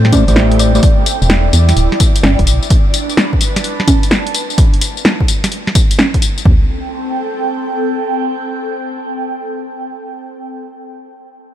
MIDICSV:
0, 0, Header, 1, 6, 480
1, 0, Start_track
1, 0, Key_signature, 0, "minor"
1, 0, Tempo, 468750
1, 850, Time_signature, 4, 2, 24, 8
1, 11819, End_track
2, 0, Start_track
2, 0, Title_t, "Synth pluck"
2, 0, Program_c, 0, 84
2, 130, Note_on_c, 0, 74, 91
2, 232, Note_off_c, 0, 74, 0
2, 290, Note_on_c, 0, 74, 77
2, 341, Note_off_c, 0, 74, 0
2, 610, Note_on_c, 0, 74, 88
2, 712, Note_off_c, 0, 74, 0
2, 771, Note_on_c, 0, 74, 73
2, 821, Note_off_c, 0, 74, 0
2, 11819, End_track
3, 0, Start_track
3, 0, Title_t, "Analog synth pad"
3, 0, Program_c, 1, 89
3, 0, Note_on_c, 1, 60, 74
3, 0, Note_on_c, 1, 69, 78
3, 0, Note_on_c, 1, 79, 80
3, 848, Note_off_c, 1, 60, 0
3, 849, Note_on_c, 1, 64, 85
3, 1022, Note_on_c, 1, 74, 78
3, 1538, Note_off_c, 1, 69, 0
3, 2528, Note_off_c, 1, 79, 0
3, 2530, Note_on_c, 1, 62, 92
3, 3032, Note_on_c, 1, 71, 78
3, 3312, Note_off_c, 1, 74, 0
3, 3313, Note_off_c, 1, 64, 0
3, 3424, Note_on_c, 1, 81, 87
3, 4450, Note_off_c, 1, 71, 0
3, 4577, Note_off_c, 1, 81, 0
3, 4690, Note_off_c, 1, 62, 0
3, 6610, Note_on_c, 1, 60, 79
3, 6709, Note_on_c, 1, 69, 77
3, 6787, Note_on_c, 1, 79, 77
3, 10616, Note_off_c, 1, 60, 0
3, 10715, Note_off_c, 1, 69, 0
3, 10794, Note_off_c, 1, 79, 0
3, 11819, End_track
4, 0, Start_track
4, 0, Title_t, "Clean electric guitar"
4, 0, Program_c, 2, 27
4, 125, Note_on_c, 2, 57, 91
4, 130, Note_on_c, 2, 67, 82
4, 134, Note_on_c, 2, 72, 98
4, 137, Note_on_c, 2, 64, 79
4, 236, Note_off_c, 2, 57, 0
4, 236, Note_off_c, 2, 64, 0
4, 236, Note_off_c, 2, 67, 0
4, 236, Note_off_c, 2, 72, 0
4, 286, Note_on_c, 2, 57, 85
4, 287, Note_on_c, 2, 67, 78
4, 289, Note_on_c, 2, 72, 99
4, 292, Note_on_c, 2, 64, 83
4, 730, Note_off_c, 2, 64, 0
4, 730, Note_off_c, 2, 67, 0
4, 730, Note_off_c, 2, 72, 0
4, 731, Note_off_c, 2, 57, 0
4, 764, Note_on_c, 2, 57, 99
4, 770, Note_on_c, 2, 67, 93
4, 774, Note_on_c, 2, 72, 106
4, 779, Note_on_c, 2, 64, 93
4, 822, Note_off_c, 2, 64, 0
4, 822, Note_off_c, 2, 67, 0
4, 823, Note_off_c, 2, 57, 0
4, 823, Note_off_c, 2, 72, 0
4, 11819, End_track
5, 0, Start_track
5, 0, Title_t, "FM bass"
5, 0, Program_c, 3, 39
5, 0, Note_on_c, 3, 45, 92
5, 233, Note_off_c, 3, 45, 0
5, 288, Note_on_c, 3, 33, 83
5, 821, Note_off_c, 3, 33, 0
5, 1249, Note_on_c, 3, 28, 85
5, 1542, Note_off_c, 3, 28, 0
5, 1570, Note_on_c, 3, 40, 91
5, 1775, Note_off_c, 3, 40, 0
5, 1809, Note_on_c, 3, 26, 88
5, 1935, Note_off_c, 3, 26, 0
5, 2289, Note_on_c, 3, 31, 90
5, 2415, Note_off_c, 3, 31, 0
5, 2451, Note_on_c, 3, 28, 107
5, 2529, Note_on_c, 3, 35, 106
5, 2545, Note_off_c, 3, 28, 0
5, 2655, Note_off_c, 3, 35, 0
5, 11819, End_track
6, 0, Start_track
6, 0, Title_t, "Drums"
6, 49, Note_on_c, 9, 40, 56
6, 128, Note_on_c, 9, 46, 106
6, 128, Note_on_c, 9, 54, 83
6, 128, Note_on_c, 9, 63, 89
6, 129, Note_on_c, 9, 36, 109
6, 151, Note_off_c, 9, 40, 0
6, 231, Note_off_c, 9, 46, 0
6, 231, Note_off_c, 9, 54, 0
6, 231, Note_off_c, 9, 63, 0
6, 232, Note_off_c, 9, 36, 0
6, 288, Note_on_c, 9, 42, 65
6, 288, Note_on_c, 9, 54, 45
6, 368, Note_off_c, 9, 54, 0
6, 368, Note_on_c, 9, 38, 123
6, 368, Note_on_c, 9, 54, 32
6, 391, Note_off_c, 9, 42, 0
6, 470, Note_off_c, 9, 38, 0
6, 470, Note_off_c, 9, 54, 0
6, 528, Note_on_c, 9, 42, 53
6, 608, Note_on_c, 9, 46, 90
6, 608, Note_on_c, 9, 54, 77
6, 630, Note_off_c, 9, 42, 0
6, 710, Note_off_c, 9, 46, 0
6, 710, Note_off_c, 9, 54, 0
6, 768, Note_on_c, 9, 54, 48
6, 848, Note_off_c, 9, 54, 0
6, 848, Note_on_c, 9, 42, 72
6, 848, Note_on_c, 9, 54, 34
6, 849, Note_on_c, 9, 36, 125
6, 950, Note_off_c, 9, 42, 0
6, 950, Note_off_c, 9, 54, 0
6, 952, Note_off_c, 9, 36, 0
6, 1088, Note_on_c, 9, 46, 105
6, 1088, Note_on_c, 9, 54, 80
6, 1191, Note_off_c, 9, 46, 0
6, 1191, Note_off_c, 9, 54, 0
6, 1248, Note_on_c, 9, 54, 45
6, 1328, Note_off_c, 9, 54, 0
6, 1328, Note_on_c, 9, 38, 123
6, 1328, Note_on_c, 9, 40, 57
6, 1328, Note_on_c, 9, 54, 36
6, 1430, Note_off_c, 9, 38, 0
6, 1430, Note_off_c, 9, 40, 0
6, 1430, Note_off_c, 9, 54, 0
6, 1567, Note_on_c, 9, 46, 99
6, 1567, Note_on_c, 9, 54, 82
6, 1670, Note_off_c, 9, 46, 0
6, 1670, Note_off_c, 9, 54, 0
6, 1728, Note_on_c, 9, 40, 66
6, 1728, Note_on_c, 9, 42, 69
6, 1728, Note_on_c, 9, 54, 45
6, 1808, Note_off_c, 9, 42, 0
6, 1808, Note_off_c, 9, 54, 0
6, 1808, Note_on_c, 9, 42, 72
6, 1808, Note_on_c, 9, 54, 35
6, 1830, Note_off_c, 9, 40, 0
6, 1911, Note_off_c, 9, 42, 0
6, 1911, Note_off_c, 9, 54, 0
6, 1968, Note_on_c, 9, 40, 56
6, 2048, Note_on_c, 9, 46, 115
6, 2048, Note_on_c, 9, 54, 81
6, 2050, Note_on_c, 9, 36, 104
6, 2070, Note_off_c, 9, 40, 0
6, 2150, Note_off_c, 9, 46, 0
6, 2150, Note_off_c, 9, 54, 0
6, 2152, Note_off_c, 9, 36, 0
6, 2208, Note_on_c, 9, 42, 71
6, 2208, Note_on_c, 9, 54, 46
6, 2288, Note_off_c, 9, 54, 0
6, 2288, Note_on_c, 9, 38, 111
6, 2288, Note_on_c, 9, 54, 32
6, 2288, Note_on_c, 9, 63, 81
6, 2310, Note_off_c, 9, 42, 0
6, 2390, Note_off_c, 9, 38, 0
6, 2390, Note_off_c, 9, 54, 0
6, 2390, Note_off_c, 9, 63, 0
6, 2448, Note_on_c, 9, 42, 53
6, 2450, Note_on_c, 9, 36, 59
6, 2528, Note_on_c, 9, 46, 95
6, 2528, Note_on_c, 9, 54, 78
6, 2551, Note_off_c, 9, 42, 0
6, 2552, Note_off_c, 9, 36, 0
6, 2631, Note_off_c, 9, 46, 0
6, 2631, Note_off_c, 9, 54, 0
6, 2689, Note_on_c, 9, 54, 48
6, 2769, Note_off_c, 9, 54, 0
6, 2769, Note_on_c, 9, 42, 72
6, 2769, Note_on_c, 9, 54, 33
6, 2770, Note_on_c, 9, 36, 117
6, 2871, Note_off_c, 9, 42, 0
6, 2871, Note_off_c, 9, 54, 0
6, 2872, Note_off_c, 9, 36, 0
6, 3008, Note_on_c, 9, 46, 112
6, 3008, Note_on_c, 9, 54, 77
6, 3111, Note_off_c, 9, 46, 0
6, 3111, Note_off_c, 9, 54, 0
6, 3169, Note_on_c, 9, 54, 44
6, 3249, Note_off_c, 9, 54, 0
6, 3249, Note_on_c, 9, 38, 118
6, 3249, Note_on_c, 9, 40, 57
6, 3249, Note_on_c, 9, 54, 33
6, 3352, Note_off_c, 9, 38, 0
6, 3352, Note_off_c, 9, 40, 0
6, 3352, Note_off_c, 9, 54, 0
6, 3410, Note_on_c, 9, 36, 61
6, 3489, Note_on_c, 9, 46, 99
6, 3489, Note_on_c, 9, 54, 77
6, 3512, Note_off_c, 9, 36, 0
6, 3591, Note_off_c, 9, 46, 0
6, 3591, Note_off_c, 9, 54, 0
6, 3649, Note_on_c, 9, 40, 67
6, 3649, Note_on_c, 9, 42, 70
6, 3649, Note_on_c, 9, 54, 45
6, 3729, Note_off_c, 9, 42, 0
6, 3729, Note_off_c, 9, 54, 0
6, 3729, Note_on_c, 9, 42, 75
6, 3729, Note_on_c, 9, 54, 34
6, 3752, Note_off_c, 9, 40, 0
6, 3832, Note_off_c, 9, 42, 0
6, 3832, Note_off_c, 9, 54, 0
6, 3889, Note_on_c, 9, 40, 56
6, 3969, Note_on_c, 9, 46, 109
6, 3969, Note_on_c, 9, 54, 78
6, 3969, Note_on_c, 9, 63, 81
6, 3970, Note_on_c, 9, 36, 102
6, 3991, Note_off_c, 9, 40, 0
6, 4072, Note_off_c, 9, 36, 0
6, 4072, Note_off_c, 9, 46, 0
6, 4072, Note_off_c, 9, 54, 0
6, 4072, Note_off_c, 9, 63, 0
6, 4129, Note_on_c, 9, 42, 71
6, 4129, Note_on_c, 9, 54, 42
6, 4209, Note_off_c, 9, 54, 0
6, 4209, Note_on_c, 9, 38, 116
6, 4209, Note_on_c, 9, 54, 33
6, 4232, Note_off_c, 9, 42, 0
6, 4311, Note_off_c, 9, 38, 0
6, 4311, Note_off_c, 9, 54, 0
6, 4368, Note_on_c, 9, 42, 56
6, 4449, Note_on_c, 9, 46, 95
6, 4449, Note_on_c, 9, 54, 77
6, 4471, Note_off_c, 9, 42, 0
6, 4552, Note_off_c, 9, 46, 0
6, 4552, Note_off_c, 9, 54, 0
6, 4609, Note_on_c, 9, 54, 48
6, 4689, Note_off_c, 9, 54, 0
6, 4689, Note_on_c, 9, 42, 71
6, 4689, Note_on_c, 9, 54, 33
6, 4690, Note_on_c, 9, 36, 123
6, 4792, Note_off_c, 9, 36, 0
6, 4792, Note_off_c, 9, 42, 0
6, 4792, Note_off_c, 9, 54, 0
6, 4850, Note_on_c, 9, 42, 40
6, 4930, Note_on_c, 9, 46, 117
6, 4930, Note_on_c, 9, 54, 73
6, 4952, Note_off_c, 9, 42, 0
6, 5032, Note_off_c, 9, 46, 0
6, 5032, Note_off_c, 9, 54, 0
6, 5091, Note_on_c, 9, 54, 44
6, 5171, Note_off_c, 9, 54, 0
6, 5171, Note_on_c, 9, 38, 125
6, 5171, Note_on_c, 9, 40, 59
6, 5171, Note_on_c, 9, 54, 33
6, 5273, Note_off_c, 9, 38, 0
6, 5273, Note_off_c, 9, 40, 0
6, 5273, Note_off_c, 9, 54, 0
6, 5330, Note_on_c, 9, 36, 60
6, 5410, Note_on_c, 9, 46, 106
6, 5410, Note_on_c, 9, 54, 74
6, 5432, Note_off_c, 9, 36, 0
6, 5513, Note_off_c, 9, 46, 0
6, 5513, Note_off_c, 9, 54, 0
6, 5570, Note_on_c, 9, 40, 69
6, 5570, Note_on_c, 9, 42, 70
6, 5570, Note_on_c, 9, 54, 43
6, 5650, Note_off_c, 9, 42, 0
6, 5650, Note_off_c, 9, 54, 0
6, 5650, Note_on_c, 9, 42, 69
6, 5650, Note_on_c, 9, 54, 31
6, 5672, Note_off_c, 9, 40, 0
6, 5752, Note_off_c, 9, 42, 0
6, 5752, Note_off_c, 9, 54, 0
6, 5810, Note_on_c, 9, 40, 59
6, 5890, Note_on_c, 9, 36, 104
6, 5890, Note_on_c, 9, 46, 117
6, 5890, Note_on_c, 9, 54, 76
6, 5912, Note_off_c, 9, 40, 0
6, 5992, Note_off_c, 9, 36, 0
6, 5992, Note_off_c, 9, 46, 0
6, 5992, Note_off_c, 9, 54, 0
6, 6050, Note_on_c, 9, 42, 68
6, 6050, Note_on_c, 9, 54, 43
6, 6130, Note_off_c, 9, 54, 0
6, 6130, Note_on_c, 9, 38, 116
6, 6130, Note_on_c, 9, 54, 31
6, 6130, Note_on_c, 9, 63, 71
6, 6153, Note_off_c, 9, 42, 0
6, 6233, Note_off_c, 9, 38, 0
6, 6233, Note_off_c, 9, 54, 0
6, 6233, Note_off_c, 9, 63, 0
6, 6290, Note_on_c, 9, 36, 60
6, 6290, Note_on_c, 9, 42, 55
6, 6370, Note_on_c, 9, 46, 101
6, 6370, Note_on_c, 9, 54, 75
6, 6392, Note_off_c, 9, 36, 0
6, 6392, Note_off_c, 9, 42, 0
6, 6472, Note_off_c, 9, 46, 0
6, 6472, Note_off_c, 9, 54, 0
6, 6530, Note_on_c, 9, 42, 40
6, 6530, Note_on_c, 9, 54, 45
6, 6610, Note_on_c, 9, 36, 110
6, 6610, Note_on_c, 9, 43, 110
6, 6632, Note_off_c, 9, 42, 0
6, 6632, Note_off_c, 9, 54, 0
6, 6712, Note_off_c, 9, 36, 0
6, 6712, Note_off_c, 9, 43, 0
6, 11819, End_track
0, 0, End_of_file